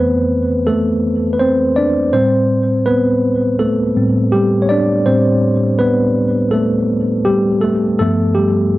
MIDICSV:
0, 0, Header, 1, 2, 480
1, 0, Start_track
1, 0, Key_signature, 0, "minor"
1, 0, Tempo, 731707
1, 1404, Time_signature, 4, 2, 24, 8
1, 5762, End_track
2, 0, Start_track
2, 0, Title_t, "Tine electric piano"
2, 0, Program_c, 0, 4
2, 0, Control_c, 0, 64, 127
2, 0, Note_on_c, 0, 41, 51
2, 0, Note_on_c, 0, 52, 49
2, 0, Note_on_c, 0, 57, 54
2, 0, Note_on_c, 0, 59, 66
2, 0, Note_on_c, 0, 60, 69
2, 0, Note_on_c, 0, 71, 84
2, 0, Note_on_c, 0, 72, 87
2, 415, Note_off_c, 0, 71, 0
2, 420, Note_off_c, 0, 59, 0
2, 438, Note_off_c, 0, 57, 0
2, 438, Note_on_c, 0, 69, 88
2, 446, Note_on_c, 0, 57, 69
2, 857, Note_off_c, 0, 69, 0
2, 861, Note_off_c, 0, 57, 0
2, 873, Note_on_c, 0, 71, 64
2, 915, Note_off_c, 0, 72, 0
2, 915, Note_on_c, 0, 72, 91
2, 917, Note_off_c, 0, 71, 0
2, 924, Note_off_c, 0, 60, 0
2, 924, Note_on_c, 0, 60, 69
2, 1147, Note_off_c, 0, 60, 0
2, 1156, Note_on_c, 0, 74, 87
2, 1166, Note_off_c, 0, 72, 0
2, 1167, Note_on_c, 0, 62, 68
2, 1376, Note_off_c, 0, 41, 0
2, 1377, Note_off_c, 0, 52, 0
2, 1389, Note_off_c, 0, 62, 0
2, 1399, Note_on_c, 0, 72, 91
2, 1401, Note_on_c, 0, 45, 53
2, 1406, Note_on_c, 0, 55, 49
2, 1407, Note_off_c, 0, 74, 0
2, 1408, Note_on_c, 0, 60, 66
2, 1412, Control_c, 0, 64, 0
2, 1517, Control_c, 0, 64, 127
2, 1860, Note_off_c, 0, 60, 0
2, 1875, Note_on_c, 0, 71, 91
2, 1885, Note_on_c, 0, 59, 69
2, 1896, Note_off_c, 0, 72, 0
2, 2338, Note_off_c, 0, 59, 0
2, 2356, Note_on_c, 0, 69, 87
2, 2366, Note_on_c, 0, 57, 63
2, 2374, Note_off_c, 0, 71, 0
2, 2591, Note_off_c, 0, 45, 0
2, 2591, Note_off_c, 0, 55, 0
2, 2598, Note_on_c, 0, 55, 44
2, 2599, Note_on_c, 0, 45, 50
2, 2604, Note_on_c, 0, 60, 53
2, 2817, Note_off_c, 0, 45, 0
2, 2817, Note_off_c, 0, 55, 0
2, 2819, Note_off_c, 0, 57, 0
2, 2820, Note_off_c, 0, 60, 0
2, 2834, Note_on_c, 0, 67, 90
2, 2848, Note_on_c, 0, 55, 67
2, 2855, Note_off_c, 0, 69, 0
2, 3027, Note_off_c, 0, 67, 0
2, 3030, Note_on_c, 0, 73, 70
2, 3034, Note_off_c, 0, 55, 0
2, 3076, Note_off_c, 0, 73, 0
2, 3076, Note_on_c, 0, 74, 93
2, 3090, Note_on_c, 0, 62, 71
2, 3310, Note_off_c, 0, 62, 0
2, 3318, Note_on_c, 0, 72, 90
2, 3322, Note_on_c, 0, 45, 51
2, 3324, Note_on_c, 0, 55, 48
2, 3327, Note_off_c, 0, 74, 0
2, 3329, Note_on_c, 0, 60, 72
2, 3775, Note_off_c, 0, 72, 0
2, 3796, Note_on_c, 0, 71, 92
2, 3806, Note_on_c, 0, 59, 72
2, 4016, Note_off_c, 0, 45, 0
2, 4018, Note_off_c, 0, 55, 0
2, 4020, Note_off_c, 0, 60, 0
2, 4254, Note_off_c, 0, 71, 0
2, 4259, Note_off_c, 0, 59, 0
2, 4271, Note_on_c, 0, 69, 89
2, 4286, Note_on_c, 0, 57, 72
2, 4739, Note_off_c, 0, 57, 0
2, 4755, Note_on_c, 0, 67, 89
2, 4766, Note_on_c, 0, 55, 65
2, 4772, Note_off_c, 0, 69, 0
2, 4982, Note_off_c, 0, 67, 0
2, 4988, Note_off_c, 0, 55, 0
2, 4994, Note_on_c, 0, 69, 88
2, 5009, Note_on_c, 0, 57, 65
2, 5230, Note_off_c, 0, 57, 0
2, 5232, Note_off_c, 0, 69, 0
2, 5240, Note_on_c, 0, 69, 96
2, 5248, Note_on_c, 0, 43, 57
2, 5251, Note_on_c, 0, 53, 51
2, 5253, Control_c, 0, 64, 0
2, 5256, Note_on_c, 0, 59, 57
2, 5257, Note_on_c, 0, 57, 77
2, 5383, Control_c, 0, 64, 127
2, 5474, Note_off_c, 0, 57, 0
2, 5475, Note_on_c, 0, 67, 88
2, 5489, Note_off_c, 0, 69, 0
2, 5489, Note_on_c, 0, 55, 66
2, 5762, Note_off_c, 0, 43, 0
2, 5762, Note_off_c, 0, 53, 0
2, 5762, Note_off_c, 0, 55, 0
2, 5762, Note_off_c, 0, 59, 0
2, 5762, Note_off_c, 0, 67, 0
2, 5762, End_track
0, 0, End_of_file